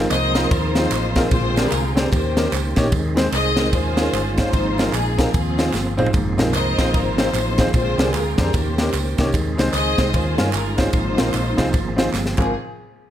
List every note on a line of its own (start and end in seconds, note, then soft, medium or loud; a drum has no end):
0.00 0.32 G#2 medium
0.00 1.30 F3 medium
0.00 1.30 A#3 medium
0.00 2.10 C4 medium
0.00 1.30 G#4 medium
0.11 0.45 C2 loud
0.11 0.88 A#4 medium
0.11 0.50 C5 medium
0.11 0.48 D#5 loud
0.11 clap medium
0.11 ride bell medium
0.11 tambourine loud
0.35 0.44 C4 medium
0.35 0.44 D#4 medium
0.35 0.45 F4 medium
0.35 0.45 G#4 medium
0.35 0.45 C5 medium
0.35 snare loud
0.35 ride bell medium
0.35 tambourine medium
0.51 0.86 D#2 loud
0.51 1.28 D#4 medium
0.51 1.28 F4 medium
0.51 1.28 C5 loud
0.51 kick loud
0.51 ride bell medium
0.51 tambourine medium
0.75 0.85 C4 medium
0.75 0.85 D#4 medium
0.75 0.85 F4 medium
0.75 0.86 G#4 medium
0.75 0.86 C5 medium
0.75 snare loud
0.75 ride bell medium
0.75 tambourine soft
0.91 1.25 A1 medium
0.91 clap medium
0.91 ride bell medium
0.91 tambourine medium
1.15 1.25 C4 medium
1.15 1.25 D#4 medium
1.15 1.25 F4 medium
1.15 1.25 G#4 medium
1.15 1.26 A#4 loud
1.15 kick loud
1.15 snare loud
1.15 ride bell medium
1.15 tambourine medium
1.29 1.66 A#1 loud
1.29 1.93 A#2 medium
1.29 2.12 D3 medium
1.29 2.12 G#3 medium
1.29 2.08 F4 medium
1.29 2.08 G#4 medium
1.29 1.68 C5 loud
1.29 2.91 G5 medium
1.29 kick loud
1.29 ride bell medium
1.29 tambourine medium
1.56 1.65 C4 medium
1.56 1.65 D4 medium
1.56 1.66 G4 medium
1.56 1.66 G#4 medium
1.56 1.66 A#4 medium
1.56 snare loud
1.56 ride bell medium
1.56 tambourine medium
1.70 2.06 C2 medium
1.70 1.94 A#4 medium
1.70 clap medium
1.70 ride bell medium
1.70 tambourine medium
1.95 2.05 C4 medium
1.95 2.05 D4 medium
1.95 2.05 G4 medium
1.95 2.06 G#4 medium
1.95 2.10 A#4 medium
1.95 2.06 C5 medium
1.95 snare loud
1.95 ride bell medium
1.95 tambourine medium
2.12 2.46 D#2 loud
2.12 4.51 D#3 medium
2.12 2.73 D#3 medium
2.12 2.92 A#3 medium
2.12 2.92 C#4 medium
2.12 2.90 G4 medium
2.12 2.77 C5 medium
2.12 kick loud
2.12 ride bell medium
2.12 tambourine medium
2.36 2.45 A#3 medium
2.36 2.46 C#4 medium
2.36 2.46 D#4 medium
2.36 2.46 G4 medium
2.36 2.46 A#4 medium
2.36 snare loud
2.36 ride bell medium
2.36 tambourine medium
2.52 2.73 C#2 medium
2.52 clap loud
2.52 ride bell medium
2.52 tambourine medium
2.76 2.90 A#1 medium
2.76 2.86 A#3 medium
2.76 2.86 C#4 medium
2.76 2.86 D#4 medium
2.76 2.86 G4 medium
2.76 2.86 C#5 loud
2.76 kick medium
2.76 snare loud
2.76 ride bell medium
2.76 tambourine medium
2.91 3.27 D#2 loud
2.91 3.53 D#3 medium
2.91 3.72 G#3 medium
2.91 3.72 C4 medium
2.91 3.72 G#4 medium
2.91 kick loud
2.91 ride bell medium
2.91 tambourine medium
3.16 3.25 G#3 medium
3.16 3.25 C4 medium
3.16 3.26 D#4 medium
3.16 3.26 G#4 medium
3.16 3.26 C5 loud
3.16 snare loud
3.16 ride bell medium
3.16 tambourine medium
3.32 3.73 C2 medium
3.32 3.70 G#4 medium
3.32 3.71 C5 medium
3.32 3.70 D#5 loud
3.32 clap medium
3.32 ride bell medium
3.32 tambourine medium
3.57 3.66 G#3 medium
3.57 3.66 C4 medium
3.57 3.66 D#4 medium
3.57 3.67 G#4 medium
3.57 3.67 A#4 medium
3.57 snare loud
3.57 ride bell medium
3.57 tambourine medium
3.73 4.07 D#2 loud
3.73 4.34 D#3 medium
3.73 4.53 G#3 medium
3.73 4.53 C#4 medium
3.73 4.53 F4 medium
3.73 4.37 F4 medium
3.73 4.50 G#4 medium
3.73 4.37 C5 loud
3.73 kick loud
3.73 ride bell medium
3.73 tambourine medium
3.97 4.06 C#4 medium
3.97 4.06 D#4 medium
3.97 4.07 F4 medium
3.97 4.07 G#4 medium
3.97 4.07 A#4 medium
3.97 snare loud
3.97 ride bell medium
3.97 tambourine medium
4.13 4.47 G1 loud
4.13 clap medium
4.13 ride bell medium
4.13 tambourine medium
4.37 4.47 C#4 medium
4.37 4.47 D#4 medium
4.37 5.14 D#4 medium
4.37 5.14 F4 medium
4.37 4.47 F4 medium
4.37 4.47 G#4 medium
4.37 4.90 C5 loud
4.37 4.47 C5 medium
4.37 kick medium
4.37 snare loud
4.37 ride bell medium
4.37 tambourine medium
4.53 4.88 G#1 loud
4.53 5.15 G#2 medium
4.53 6.13 F3 medium
4.53 6.13 A#3 medium
4.53 6.12 C4 medium
4.53 6.13 G#4 medium
4.53 kick loud
4.53 ride bell medium
4.53 tambourine medium
4.78 4.87 C4 medium
4.78 4.87 D#4 medium
4.78 4.87 F4 medium
4.78 4.87 G#4 medium
4.78 4.88 A#4 medium
4.78 snare loud
4.78 ride bell medium
4.78 tambourine medium
4.93 5.27 A#1 medium
4.93 5.18 G#4 medium
4.93 clap medium
4.93 ride bell medium
4.93 tambourine medium
5.18 5.27 C4 medium
5.18 5.27 D#4 medium
5.18 5.27 F4 medium
5.18 5.28 G#4 medium
5.18 5.34 A#4 medium
5.18 5.28 A#4 medium
5.18 kick medium
5.18 snare loud
5.18 ride bell medium
5.18 tambourine medium
5.33 5.68 D#2 medium
5.33 6.10 C4 medium
5.33 6.10 F4 medium
5.33 5.99 G#4 medium
5.33 kick loud
5.33 ride bell medium
5.33 tambourine medium
5.58 5.67 C4 medium
5.58 5.67 D#4 medium
5.58 5.67 F4 medium
5.58 5.67 G#4 medium
5.58 5.67 C5 medium
5.58 snare loud
5.58 ride bell medium
5.58 tambourine medium
5.73 6.08 G1 loud
5.73 snare medium
5.73 clap medium
5.73 tambourine medium
5.97 6.07 C4 medium
5.97 6.07 D#4 medium
5.97 6.07 F4 medium
5.97 6.07 G#4 medium
5.97 6.07 C5 medium
5.97 mid tom medium
5.97 tambourine medium
6.06 floor tom loud
6.13 6.35 G#1 loud
6.13 6.74 G#2 medium
6.13 7.72 F3 medium
6.13 7.73 A#3 medium
6.13 8.52 C4 medium
6.13 7.73 G#4 medium
6.13 kick loud
6.13 ride bell medium
6.13 tambourine medium
6.38 6.54 A#1 medium
6.38 6.47 C4 medium
6.38 6.47 D#4 medium
6.38 6.47 F4 medium
6.38 6.47 G#4 medium
6.38 6.47 A#4 loud
6.38 snare loud
6.38 ride bell medium
6.38 tambourine medium
6.53 6.75 C2 medium
6.53 7.30 A#4 medium
6.53 6.92 C5 medium
6.53 6.91 D#5 loud
6.53 clap medium
6.53 ride bell medium
6.53 tambourine medium
6.78 6.91 A#1 medium
6.78 6.87 C4 medium
6.78 6.87 D#4 medium
6.78 6.87 F4 medium
6.78 6.88 G#4 medium
6.78 6.88 C5 medium
6.78 kick medium
6.78 snare loud
6.78 ride bell medium
6.78 tambourine medium
6.92 7.28 G#1 loud
6.92 7.69 D#4 medium
6.92 7.69 F4 medium
6.92 7.73 C5 loud
6.92 kick loud
6.92 ride bell medium
6.92 tambourine medium
7.18 7.27 C4 medium
7.18 7.27 D#4 medium
7.18 7.27 F4 medium
7.18 7.28 G#4 medium
7.18 7.28 C5 medium
7.18 snare loud
7.18 ride bell medium
7.18 tambourine medium
7.34 7.68 A1 medium
7.34 clap medium
7.34 ride bell medium
7.34 tambourine medium
7.58 7.68 C4 medium
7.58 7.68 D#4 medium
7.58 7.68 F4 medium
7.58 7.68 G#4 medium
7.58 7.68 C5 loud
7.58 kick medium
7.58 snare loud
7.58 ride bell medium
7.58 tambourine medium
7.73 7.95 A#1 loud
7.73 8.35 A#2 medium
7.73 8.53 D3 medium
7.73 8.53 G#3 medium
7.73 8.50 F4 medium
7.73 8.50 G#4 medium
7.73 8.12 C5 loud
7.73 9.32 G5 medium
7.73 kick loud
7.73 ride bell medium
7.73 tambourine medium
7.98 8.11 C2 loud
7.98 8.07 C4 medium
7.98 8.07 D4 medium
7.98 8.07 G4 medium
7.98 8.08 G#4 medium
7.98 8.08 A#4 medium
7.98 snare loud
7.98 ride bell medium
7.98 tambourine medium
8.13 8.34 D2 medium
8.13 8.39 A#4 medium
8.13 clap medium
8.13 ride bell medium
8.13 tambourine medium
8.38 8.51 F2 medium
8.38 8.47 C4 medium
8.38 8.47 D4 medium
8.38 8.47 G4 medium
8.38 8.48 G#4 medium
8.38 8.53 A#4 medium
8.38 8.48 C5 medium
8.38 kick loud
8.38 snare loud
8.38 ride bell medium
8.38 tambourine medium
8.53 8.88 D#2 loud
8.53 10.91 D#3 medium
8.53 9.15 D#3 medium
8.53 9.33 A#3 medium
8.53 9.33 C#4 medium
8.53 9.31 G4 medium
8.53 9.20 C5 medium
8.53 kick loud
8.53 ride bell medium
8.53 tambourine medium
8.78 8.87 A#3 medium
8.78 8.88 C#4 medium
8.78 8.88 D#4 medium
8.78 8.88 G4 medium
8.78 8.88 A#4 medium
8.78 snare loud
8.78 ride bell medium
8.78 tambourine medium
8.93 9.14 C#2 medium
8.93 clap medium
8.93 ride bell medium
8.93 tambourine medium
9.18 9.32 C2 loud
9.18 9.27 A#3 medium
9.18 9.27 C#4 medium
9.18 9.28 D#4 medium
9.18 9.28 G4 medium
9.18 9.28 C#5 loud
9.18 kick medium
9.18 snare loud
9.18 ride bell medium
9.18 tambourine medium
9.32 9.55 D#2 loud
9.32 9.95 D#3 medium
9.32 10.92 G#3 medium
9.32 10.13 C4 medium
9.32 10.13 G#4 medium
9.32 kick loud
9.32 ride bell medium
9.32 tambourine medium
9.57 9.71 C2 medium
9.57 9.67 G#3 medium
9.57 9.67 C4 medium
9.57 9.67 D#4 medium
9.57 9.67 G#4 medium
9.57 9.68 C5 loud
9.57 snare loud
9.57 ride bell medium
9.57 tambourine medium
9.73 9.94 C#2 medium
9.73 10.11 G#4 medium
9.73 10.12 C5 medium
9.73 10.11 D#5 loud
9.73 clap medium
9.73 ride bell medium
9.73 tambourine loud
9.98 10.11 C2 loud
9.98 10.07 G#3 medium
9.98 10.07 C4 medium
9.98 10.07 D#4 medium
9.98 10.07 G#4 medium
9.98 10.07 C5 medium
9.98 kick medium
9.98 snare loud
9.98 ride bell medium
9.98 tambourine medium
10.13 10.35 D#2 loud
10.13 10.74 D#3 medium
10.13 10.93 C#4 medium
10.13 10.78 F4 medium
10.13 10.93 F4 medium
10.13 10.90 G#4 medium
10.13 10.53 C5 loud
10.13 kick loud
10.13 ride bell medium
10.13 tambourine medium
10.37 10.52 G2 medium
10.37 10.47 C#4 medium
10.37 10.47 D#4 medium
10.37 10.47 F4 medium
10.37 10.47 G#4 medium
10.37 10.47 A#4 medium
10.37 snare loud
10.37 ride bell medium
10.37 tambourine soft
10.53 10.88 G1 medium
10.53 10.77 A#4 medium
10.53 clap medium
10.53 ride bell medium
10.53 tambourine medium
10.77 10.86 C#4 medium
10.77 10.87 D#4 medium
10.77 12.10 D#4 medium
10.77 10.87 F4 medium
10.77 12.10 F4 medium
10.77 10.87 G#4 medium
10.77 10.87 C5 medium
10.77 12.14 C5 medium
10.77 kick medium
10.77 snare loud
10.77 ride bell medium
10.77 tambourine medium
10.93 11.14 G#1 loud
10.93 11.54 G#2 medium
10.93 12.37 F3 medium
10.93 12.36 A#3 medium
10.93 12.36 C4 medium
10.93 12.37 G#4 medium
10.93 kick loud
10.93 ride bell medium
10.93 tambourine medium
11.17 11.32 A#1 medium
11.17 11.26 C4 medium
11.17 11.26 D#4 medium
11.17 11.27 F4 medium
11.17 11.27 G#4 medium
11.17 11.27 A#4 medium
11.17 snare loud
11.17 ride bell medium
11.17 tambourine medium
11.34 11.55 A#1 medium
11.34 clap medium
11.34 ride bell medium
11.34 tambourine medium
11.57 11.71 C2 medium
11.57 11.66 C4 medium
11.57 11.66 D#4 medium
11.57 11.67 F4 medium
11.57 11.67 G#4 medium
11.57 11.67 C5 loud
11.57 kick medium
11.57 snare loud
11.57 ride bell medium
11.57 tambourine medium
11.73 12.08 G#1 loud
11.73 kick loud
11.73 ride bell medium
11.73 tambourine medium
11.96 12.06 C4 medium
11.96 12.06 D#4 medium
11.96 12.06 F4 medium
11.96 12.07 G#4 medium
11.96 12.07 C5 loud
11.96 snare loud
11.96 ride bell medium
11.96 tambourine medium
12.13 12.34 G1 loud
12.13 snare medium
12.13 clap medium
12.13 tambourine medium
12.26 snare medium
12.37 12.52 G#1 medium
12.37 12.52 G#1 loud
12.37 12.52 F3 medium
12.37 12.53 A#3 medium
12.37 12.52 C4 medium
12.37 12.53 C4 medium
12.37 12.52 F4 medium
12.37 12.52 G#4 medium
12.37 12.53 G#4 medium
12.37 12.52 A#4 medium
12.37 kick loud
12.37 clap medium
12.37 crash medium